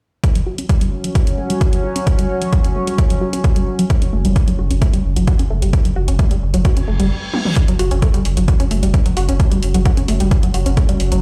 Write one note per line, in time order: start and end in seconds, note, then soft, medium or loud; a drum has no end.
0.24 7.11 F#3 medium
0.24 7.11 C#4 medium
0.24 kick loud
0.24 closed hi-hat medium
0.35 0.43 F#3 medium
0.35 closed hi-hat medium
0.47 0.52 F#4 medium
0.58 0.63 C#4 medium
0.58 closed hi-hat medium
0.69 0.75 A3 medium
0.69 kick loud
0.69 closed hi-hat medium
0.81 0.86 G3 medium
0.81 closed hi-hat medium
1.04 1.12 F#3 medium
1.04 closed hi-hat medium
1.15 1.21 F#4 medium
1.15 kick loud
1.15 closed hi-hat medium
1.27 1.32 C#4 medium
1.27 closed hi-hat medium
1.38 1.43 A3 medium
1.50 1.55 G3 medium
1.50 closed hi-hat medium
1.61 kick loud
1.61 closed hi-hat medium
1.73 1.80 F#3 medium
1.73 closed hi-hat medium
1.84 1.89 F#4 medium
1.96 2.01 C#4 medium
1.96 closed hi-hat medium
2.07 2.12 A3 medium
2.07 kick loud
2.07 closed hi-hat medium
2.19 2.24 G3 medium
2.19 closed hi-hat medium
2.42 2.49 F#3 medium
2.42 closed hi-hat medium
2.53 2.58 F#4 medium
2.53 kick loud
2.53 closed hi-hat medium
2.64 2.69 C#4 medium
2.64 closed hi-hat medium
2.76 2.81 A3 medium
2.87 2.92 G3 medium
2.87 closed hi-hat medium
2.98 kick loud
2.98 closed hi-hat medium
3.10 3.18 F#3 medium
3.10 closed hi-hat medium
3.21 3.27 F#4 medium
3.33 3.38 C#4 medium
3.33 closed hi-hat medium
3.44 3.50 A3 medium
3.44 kick loud
3.44 closed hi-hat medium
3.56 3.61 G3 medium
3.56 closed hi-hat medium
3.79 3.86 F#3 medium
3.79 closed hi-hat medium
3.90 3.95 F#4 medium
3.90 kick loud
3.90 closed hi-hat medium
4.02 4.07 C#4 medium
4.02 closed hi-hat medium
4.13 4.24 F#1 loud
4.13 4.18 A3 medium
4.25 4.36 F#1 medium
4.25 4.30 G3 medium
4.25 closed hi-hat medium
4.36 kick loud
4.36 closed hi-hat medium
4.48 4.55 F#3 medium
4.48 closed hi-hat medium
4.59 4.70 F#1 loud
4.59 4.64 F#4 medium
4.71 4.81 F#1 medium
4.71 4.76 C#4 medium
4.71 closed hi-hat medium
4.82 4.87 A3 medium
4.82 kick loud
4.82 closed hi-hat medium
4.93 4.98 G3 medium
4.93 closed hi-hat medium
5.04 5.16 F#1 loud
5.16 5.27 F#1 medium
5.16 5.24 F#3 medium
5.16 closed hi-hat medium
5.27 5.33 F#4 medium
5.27 kick loud
5.27 closed hi-hat medium
5.39 5.44 C#4 medium
5.39 closed hi-hat medium
5.50 5.62 F#1 loud
5.50 5.56 A3 medium
5.62 5.73 F#1 medium
5.62 5.67 G3 medium
5.62 closed hi-hat medium
5.73 kick loud
5.73 closed hi-hat medium
5.85 5.93 F#3 medium
5.85 closed hi-hat medium
5.96 6.07 F#1 loud
5.96 6.01 F#4 medium
6.08 6.19 F#1 medium
6.08 6.13 C#4 medium
6.08 closed hi-hat medium
6.19 6.24 A3 medium
6.19 kick loud
6.19 closed hi-hat medium
6.31 6.36 G3 medium
6.31 closed hi-hat medium
6.42 6.53 F#1 loud
6.54 6.65 F#1 medium
6.54 6.61 F#3 medium
6.54 closed hi-hat medium
6.65 6.70 F#4 medium
6.65 kick loud
6.65 closed hi-hat medium
6.65 reverse cymbal medium
6.77 6.82 C#4 medium
6.77 closed hi-hat medium
6.88 6.99 F#1 medium
6.88 6.93 A3 medium
7.00 7.10 F#1 medium
7.00 7.05 G3 medium
7.00 closed hi-hat medium
7.34 high tom medium
7.45 mid tom medium
7.56 11.22 F#3 medium
7.56 11.22 C#4 medium
7.56 kick loud
7.56 closed hi-hat medium
7.68 7.76 F#3 medium
7.68 closed hi-hat medium
7.79 7.91 F#1 medium
7.79 7.85 F#4 medium
7.79 open hi-hat loud
7.91 8.02 F#1 medium
7.91 7.96 C#4 medium
7.91 closed hi-hat medium
8.02 8.08 A3 medium
8.02 kick loud
8.02 closed hi-hat medium
8.14 8.19 G3 medium
8.14 closed hi-hat medium
8.25 8.36 F#1 loud
8.25 open hi-hat medium
8.37 8.48 F#1 medium
8.37 8.44 F#3 medium
8.37 closed hi-hat medium
8.48 8.53 F#4 medium
8.48 kick loud
8.48 closed hi-hat medium
8.60 8.65 C#4 medium
8.60 closed hi-hat medium
8.71 8.82 F#1 loud
8.71 8.76 A3 medium
8.71 open hi-hat loud
8.83 8.94 F#1 medium
8.83 8.88 G3 medium
8.83 closed hi-hat medium
8.94 kick loud
8.94 closed hi-hat medium
9.06 9.13 F#3 medium
9.06 closed hi-hat medium
9.17 9.28 F#1 medium
9.17 9.22 F#4 medium
9.17 open hi-hat medium
9.29 9.39 F#1 medium
9.29 9.34 C#4 medium
9.29 closed hi-hat medium
9.40 9.45 A3 medium
9.40 kick loud
9.40 closed hi-hat medium
9.52 9.56 G3 medium
9.52 closed hi-hat medium
9.63 9.74 F#1 medium
9.63 open hi-hat loud
9.74 9.85 F#1 medium
9.74 9.82 F#3 medium
9.74 closed hi-hat medium
9.85 9.91 F#4 medium
9.85 kick loud
9.85 closed hi-hat medium
9.97 10.02 C#4 medium
9.97 closed hi-hat medium
10.08 10.20 F#1 loud
10.08 10.14 A3 medium
10.08 open hi-hat loud
10.20 10.31 F#1 medium
10.20 10.25 G3 medium
10.20 closed hi-hat medium
10.31 kick loud
10.31 closed hi-hat medium
10.43 10.51 F#3 medium
10.43 closed hi-hat medium
10.54 10.65 F#1 loud
10.54 10.59 F#4 medium
10.54 open hi-hat loud
10.66 10.77 F#1 medium
10.66 10.71 C#4 medium
10.66 closed hi-hat medium
10.77 10.82 A3 medium
10.77 kick loud
10.77 closed hi-hat medium
10.89 10.94 G3 medium
10.89 closed hi-hat medium
11.00 11.11 F#1 medium
11.00 open hi-hat medium
11.12 11.22 F#1 medium
11.12 11.19 F#3 medium
11.12 closed hi-hat medium